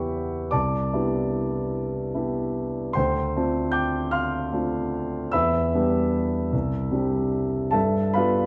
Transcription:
Already playing: E2 B3 E4 G4 B4 C#5 E5 F#5 G5 B5 C#6 E6
0.51 C2 D5 A5 D6
0.93 B3 D4 E4 G4
2.14 B3 D4 E4 G4
2.93 D2 C5 G5 C6
3.36 A3 C4 D4 F4
3.72 G5 D6 G6
4.11 F5 C6 F6
4.52 A3 C4 D4 F4
5.32 E2 E5 B5 E6
5.74 G3 B3 D4 G4
6.53 C2
6.91 G3 C4 D4 G4
7.71 G2 A4 E5 A5
8.13 G3 B3 D4 F4 B4 F5 B5

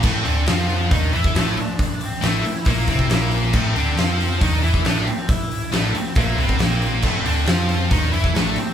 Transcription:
0.03 A1 A2 A3 C4 C5, kick, crash
0.24 D2 D3 D4, open hi-hat
0.47 F2 F3 F4, snare, open hi-hat
0.66 B4, open hi-hat
0.91 D#2 D#3 D4 D#4 D5, kick, open hi-hat
1.13 E2 E3 E4 E5, open hi-hat
1.24 kick
1.35 A1 A2 A3, snare, open hi-hat
1.57 D4 D5, open hi-hat
1.79 kick, open hi-hat
2.01 C4 C5, open hi-hat
2.14 snare
2.21 A1 A2 A3, snare, open hi-hat
2.26 E4 E5
2.45 muted distorted electric guitar stroke, muted picked electric bass stroke, open hi-hat
2.65 A#1 A#2 A#3 E4, kick, open hi-hat
2.70 E5
2.87 C2 C3 C4, kick, open hi-hat
2.99 kick
3.09 A#1 A#2 A#3, snare, open hi-hat
3.32 open hi-hat
3.53 A1 A2 A3 C4 C5, kick, crash
3.76 D2 D3 D4, open hi-hat
3.88 snare
3.96 F2 F3 F4, snare, open hi-hat
4.21 open hi-hat
4.41 D#2 D#3 D4 D#4 D5, kick, open hi-hat
4.62 E2 E3 E4 E5, open hi-hat
4.74 kick
4.84 A1 A2 A3 D4 D5, snare, open hi-hat
5.06 C4 C5, open hi-hat
5.29 E4 E5, kick, open hi-hat
5.51 open hi-hat
5.72 A1 A2 A3 D4 D5, snare, open hi-hat
5.94 C4 C5, muted picked electric bass stroke, muted distorted electric guitar stroke, open hi-hat
6.15 A#1 A#2 A3 A#3 A4, kick, open hi-hat
6.38 C2 C3 B3 C4 B4, open hi-hat
6.49 kick
6.59 A#1 A#2 A#3 C4, snare, open hi-hat
6.63 C5
6.82 open hi-hat
7.02 A1 A2 A3, kick, crash
7.07 C4 C5
7.25 D2 D3 D4, open hi-hat
7.46 F2 F3 F4, snare, open hi-hat
7.69 open hi-hat
7.90 D#2 D#3 D4 D#4 D5, kick, open hi-hat
8.12 E2 E3 E4 E5, open hi-hat
8.24 kick
8.34 A1 A2 A3 D4, snare, open hi-hat
8.38 D5
8.56 C4 C5, open hi-hat

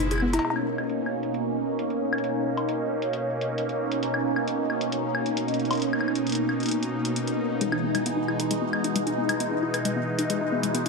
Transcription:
Already playing: F#1 B2 G#3 E4
0.11 G#4, closed hi-hat, high woodblock
0.13 high woodblock
0.16 high woodblock
0.18 high woodblock
0.20 B3, high woodblock
0.33 E4, closed hi-hat, cowbell
0.39 cowbell
0.45 B2 A#3 C#4 D#4, closed hi-hat, cowbell
0.50 cowbell
0.56 high woodblock
0.78 closed hi-hat, high woodblock
0.89 closed hi-hat
1.06 high woodblock
1.23 closed hi-hat
1.34 closed hi-hat
1.79 closed hi-hat
1.90 closed hi-hat
2.13 high woodblock
2.18 closed hi-hat
2.24 closed hi-hat
2.57 closed hi-hat, high woodblock
2.69 closed hi-hat
3.02 closed hi-hat
3.13 closed hi-hat
3.41 closed hi-hat
3.58 closed hi-hat
3.69 closed hi-hat
3.92 closed hi-hat
4.03 closed hi-hat
4.14 high woodblock
4.36 high woodblock
4.48 closed hi-hat
4.70 high woodblock
4.81 closed hi-hat
4.92 closed hi-hat
5.15 high woodblock
5.26 closed hi-hat
5.37 closed hi-hat
5.48 closed hi-hat
5.54 closed hi-hat
5.60 closed hi-hat
5.65 closed hi-hat
5.71 closed hi-hat, high woodblock
5.73 closed hi-hat
5.75 closed hi-hat
5.77 closed hi-hat
5.80 closed hi-hat
5.82 closed hi-hat
5.93 high woodblock
6.01 high woodblock
6.08 high woodblock
6.15 closed hi-hat
6.27 closed hi-hat
6.29 closed hi-hat
6.32 closed hi-hat
6.35 closed hi-hat
6.49 high woodblock
6.60 closed hi-hat
6.63 closed hi-hat
6.66 closed hi-hat
6.69 closed hi-hat
6.71 closed hi-hat
6.83 closed hi-hat
7.05 closed hi-hat
7.16 closed hi-hat
7.27 closed hi-hat
7.61 E3 G#3, closed hi-hat
7.72 D#4, high woodblock
7.84 B3
7.95 G#3, closed hi-hat, high woodblock
8.06 B3, closed hi-hat
8.17 D#4
8.28 E4, high woodblock
8.39 B4, closed hi-hat
8.51 G#3, closed hi-hat
8.62 B3
8.73 high woodblock
8.84 D#4, closed hi-hat
8.95 G#3, closed hi-hat
9.07 D#4, closed hi-hat
9.18 B3
9.29 G#3, closed hi-hat, high woodblock
9.40 B3, closed hi-hat
9.51 D#4
9.63 E4
9.74 B4, closed hi-hat, high woodblock
9.85 G#3, closed hi-hat
9.96 B3
10.19 D#4, closed hi-hat
10.30 G#3, closed hi-hat
10.41 D#4
10.52 B3
10.63 G#3, closed hi-hat
10.75 B3, closed hi-hat

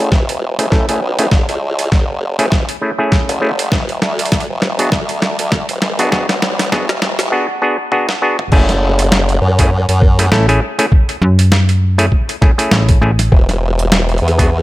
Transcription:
0.00 A3 C#4 E4 G#4
0.12 E1, kick, snare
0.29 closed hi-hat
0.59 E1 A3 C#4 E4 G#4, closed hi-hat
0.72 A3 C#4 E4 A4, kick, snare
0.89 F#1 A3 C#4 E4 G#4, closed hi-hat
1.02 B1
1.19 A3 C#4 E4 G#4, closed hi-hat
1.31 F#1, kick, snare
1.49 C#2, closed hi-hat
1.79 closed hi-hat
1.92 F#1, kick, snare
2.39 E1 A3 C#4 E4 G#4, closed hi-hat
2.52 kick, snare
2.69 closed hi-hat
2.81 A3 C#4 E4 G#4
2.98 A3 C#4 E4 G#4
3.12 kick, snare
3.29 F#1, closed hi-hat
3.41 A3 C#4 E4 G#4
3.59 closed hi-hat
3.72 E1, kick, snare
3.89 closed hi-hat
4.02 D2, snare
4.19 closed hi-hat
4.25 closed hi-hat
4.32 kick, snare, closed hi-hat
4.40 closed hi-hat
4.49 E1
4.62 snare
4.79 B3 D4 F#4 G#4, closed hi-hat
4.92 D2, kick, snare
5.09 closed hi-hat
5.22 snare
5.39 D2, closed hi-hat
5.52 kick, snare
5.69 E1, closed hi-hat
5.82 G#1, snare
5.99 B3 D4 F#4 G#4, closed hi-hat
6.12 E1 B3 D4 F#4 G#4, kick, snare
6.29 B1, snare, closed hi-hat
6.42 snare
6.59 snare, closed hi-hat
6.72 E1 B3 D4 F#4 G#4, kick, snare
6.89 snare
7.02 snare
7.19 E1, snare, closed hi-hat
7.32 B3 D4 F#4 G#4
7.62 B3 D4 F#4 G#4
7.92 B3 D4 F#4 G#4, high tom
8.09 snare
8.22 B3 D4 F#4 G#4
8.39 mid tom
8.52 F#1 A3 C#4 E4 G#4, kick, crash
8.69 snare, closed hi-hat
8.99 closed hi-hat
9.12 snare
9.29 closed hi-hat
9.42 F#2
9.59 A3 C#4 E4 G#4, kick, closed hi-hat
9.89 F#2, closed hi-hat
10.02 kick
10.19 A3 C#4 E4 G#4, closed hi-hat
10.32 A1 A3 C#4 E4 A4, snare
10.49 A3 C#4 E4 G#4, closed hi-hat
10.79 A3 C#4 E4 G#4, closed hi-hat
10.92 kick
11.09 closed hi-hat
11.22 F#2
11.39 closed hi-hat
11.52 snare
11.69 closed hi-hat
11.98 A3 C#4 E4 G#4, closed hi-hat
12.12 kick
12.29 closed hi-hat
12.41 A3 C#4 E4 G#4, kick, snare
12.58 A3 C#4 E4 G#4, closed hi-hat
12.71 A1, snare
12.89 kick, closed hi-hat
13.01 A1 A3 C#4 E4 G#4
13.19 snare, closed hi-hat
13.32 E1, kick
13.49 snare, closed hi-hat
13.79 closed hi-hat
13.92 snare
14.09 closed hi-hat
14.18 E2, closed hi-hat
14.28 closed hi-hat
14.38 B3 D4 F#4 G#4, kick, closed hi-hat

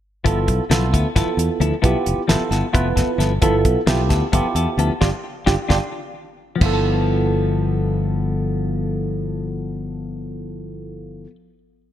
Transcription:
0.24 G1 F3 B3 E4 F4 A4, kick, closed hi-hat
0.48 B1, kick, closed hi-hat
0.70 B1 F3 B3 E4 F4 A4, snare, closed hi-hat
0.93 D2 B3 E4 A4, kick, closed hi-hat
1.16 G1 F3 B3 E4 F4 A4, kick, snare, closed hi-hat
1.26 muted fretless electric bass stroke
1.37 E2, closed hi-hat
1.60 D2 F3 B3 E4 A4, closed hi-hat
1.73 muted fretless electric bass stroke
1.82 B1 F3 B3 E4 F4 G4 A4, kick, closed hi-hat
2.06 F1, closed hi-hat
2.18 muted fretless electric bass stroke
2.28 G1 F3 B3 E4 F4 A4, snare, closed hi-hat
2.41 muted fretless electric bass stroke
2.51 G1 B3 E4 A4, snare, closed hi-hat
2.73 F1 F3 B3 E4 F4 A4 B4, kick, closed hi-hat
2.96 F1 B3 E4 A4, kick, snare, closed hi-hat
3.18 G1 F3 B3 E4 A4, snare, closed hi-hat
3.41 G1 F3 B3 E4 F4 A4, kick, closed hi-hat
3.65 B1, kick, closed hi-hat
3.86 B1 F3 B3 E4 F4 G4 A4, snare, closed hi-hat
4.09 D2 B3 E4 A4, kick, snare, closed hi-hat
4.32 G1 F3 B3 E4 F4 G4 A4, kick, closed hi-hat
4.45 muted fretless electric bass stroke
4.55 E2 B3 E4 A4, closed hi-hat
4.78 D2 F3 B3 E4 A4, closed hi-hat
4.90 muted fretless electric bass stroke
5.01 G1 D4 F4 G4, kick, snare
5.46 G1 D4 F4 G4, kick, snare
5.68 G1 D4 F4 G4, kick, snare
6.56 F3 B3
6.61 G1 B3 E4 F4, kick, crash
6.66 A4
6.73 A4

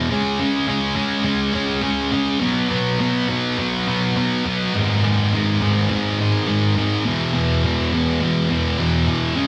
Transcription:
0.10 C#3 G#3 C#4
0.40 C#3 G#3 C#4
0.68 C#3 G#3 C#4
0.96 C#3 G#3 C#4
1.24 C#3 G#3 C#4
1.53 C#3 G#3 C#4
1.82 C#3 G#3 C#4
2.12 C#3 G#3 C#4
2.40 B2 F#3 B3
2.69 B2 F#3 B3
3.00 B2 F#3 B3
3.28 B2 F#3 B3
3.58 B2 F#3 B3
3.87 B2 F#3 B3
4.16 B2 F#3 B3
4.45 B2 F#3 B3
4.75 G#2 D#3 G#3
5.04 G#2 D#3 G#3
5.33 G#2 D#3 G#3
5.61 G#2 D#3 G#3
5.90 G#2 D#3 G#3
6.20 G#2 D#3 G#3
6.47 G#2 D#3 G#3
6.76 G#2 D#3 G#3
7.05 E2 B2 E3
7.35 E2 B2 E3
7.64 E2 B2 E3
7.93 E2 B2 E3
8.21 E2 B2 E3
8.49 E2 B2 E3
8.79 E2 B2 E3
9.07 E2 B2 E3
9.36 C#3 G#3 C#4

